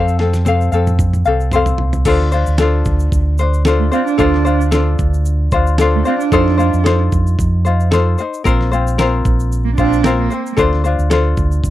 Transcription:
Already playing: fingered electric bass F2, ukulele C4 A4 C5 F5
0.08 shaker
0.19 ukulele C4 A4 F5, snare
0.33 snare, shaker
0.45 ukulele C4 A4 C5 F5, high tom, shaker
0.61 shaker
0.72 fingered electric bass F2, ukulele C4 A4 F5, shaker
0.87 mid tom, shaker
0.99 kick, mid tom, shaker
1.13 mid tom, shaker
1.25 fingered electric bass C2, ukulele C4 A4 F5, shaker
1.40 shaker
1.52 ukulele C4 A4 C5, mid tom, shaker
1.56 ukulele F5
1.66 floor tom, shaker
1.78 fingered electric bass C2, floor tom
1.93 floor tom, shaker
2.05 fingered electric bass D2, ukulele D4 F4 A4 C5, kick, crash, shaker
2.20 snare
2.32 ukulele D4 F4 C5, shaker
2.46 fingered electric bass D2, shaker
2.58 ukulele D4 F4 A4 C5, snare, shaker
2.85 fingered electric bass D2, kick, shaker
3.00 shaker
3.12 fingered electric bass D2, kick, shaker
3.38 ukulele C5, shaker
3.42 ukulele D4
3.53 shaker
3.65 ukulele D4 F4 A4 C5, snare, shaker
3.79 cello A3
3.92 cello C4, ukulele D4 F4 C5, shaker
4.07 cello D4, shaker
4.18 fingered electric bass D2, ukulele D4 F4 A4 C5, kick, shaker
4.34 snare
4.45 ukulele D4 F4 C5, shaker
4.61 shaker
4.71 ukulele D4 F4 A4 C5, snare, shaker
4.99 fingered electric bass D2, kick, shaker
5.14 shaker
5.25 shaker
5.51 fingered electric bass D2, ukulele F4 C5, kick, shaker
5.55 ukulele D4
5.67 shaker
5.78 ukulele D4 F4 A4 C5, snare, shaker
5.95 cello A3
6.05 cello C4, ukulele D4 F4 C5, shaker
6.20 cello D4, shaker
6.32 fingered electric bass F2, ukulele D#4 F4 A4 C5, kick, shaker
6.48 snare
6.58 ukulele D#4 F4 C5, shaker
6.73 fingered electric bass F2, shaker
6.84 ukulele D#4 F4 A4 C5, snare, shaker
7.12 fingered electric bass F2, kick, shaker
7.27 shaker
7.39 fingered electric bass F2, kick, shaker
7.65 ukulele D#4 F4 C5, shaker
7.80 shaker
7.91 ukulele D#4 F4 A4 C5, snare, shaker
8.18 ukulele D#4 C5, shaker
8.34 shaker
8.44 fingered electric bass A#1, ukulele C4 F4 A#4 C5, kick, shaker
8.61 snare
8.72 ukulele C4 F4 C5, shaker
8.87 shaker
8.98 ukulele C4 F4 A#4 C5, snare, shaker
9.25 fingered electric bass A#1, kick, shaker
9.40 shaker
9.52 shaker
9.65 cello A#3
9.76 fingered electric bass A#1, cello D4, ukulele F4 C5, kick, shaker
9.81 ukulele C4
9.93 shaker
10.03 cello C4, ukulele C4 F4 A#4 C5, snare, shaker
10.18 cello A#3
10.30 ukulele C4 C5, shaker
10.46 shaker
10.57 fingered electric bass D2, ukulele D4 F4 A4 C5, kick, shaker
10.73 snare
10.84 ukulele D4 F4 C5, shaker
10.99 fingered electric bass D2, shaker
11.10 ukulele D4 F4 A4 C5, snare, shaker
11.37 fingered electric bass D2, kick, shaker
11.51 shaker
11.64 fingered electric bass D2, kick, shaker

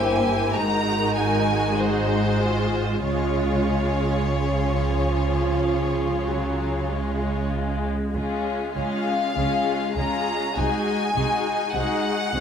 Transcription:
Already playing: double bass section G1, cello section G2, viola section A#3 E4, violin section G4 C5 G#5
0.56 double bass section G#1, cello section G#2, viola section G#3 D#4, violin section F#4 A#4 A#5
1.16 violin section G#5
1.78 viola section D#4, violin section G#4 C5
2.39 viola section F4
3.04 double bass section C#2, cello section C#3, viola section G#3 F4, violin section F4 G#4 C#5
4.35 viola section F3
6.26 viola section F#3
6.89 viola section G#3
8.14 double bass section C#2, cello section C#3, viola section G#3 C#4, violin section F4 G#4
8.75 double bass section C#2, cello section C#3, viola section G#3 C#4, violin section F4 G#4 F5
9.36 double bass section C#2, cello section C#3, viola section G#3 C#4, violin section F4 G#4
9.96 double bass section C#2, cello section C#3, viola section G#3 C#4, violin section F4 G#4 A#5
10.54 double bass section C2, cello section C3, viola section G#3 D#4, violin section F#4 G#4 G#5
11.14 double bass section C2, cello section C3, viola section G#3 D#4, violin section F#4 G#4
11.73 double bass section C2, cello section C3, viola section G#3 D#4, violin section F#4 G#4 F#5
12.33 double bass section C2, cello section C3, viola section G#3 D#4, violin section F#4 G#4

